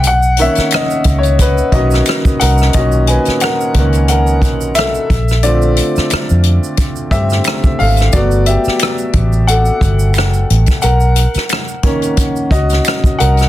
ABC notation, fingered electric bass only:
X:1
M:4/4
L:1/16
Q:"Swing 16ths" 1/4=89
K:B
V:1 name="Fingered electric bass" clef=bass
B,,,3 z3 C,,4 B,,,2 z2 =C,,2 | B,,,3 z3 C,,4 B,,,4 A,,,2- | A,,,3 z2 ^E,,2 z3 =G,,2 z2 ^G,,,2 | =G,,,3 z3 =A,,,4 G,,,2 F,,,2 A,,, z |
B,,,3 z6 z C,,2 z2 =C,,2 |]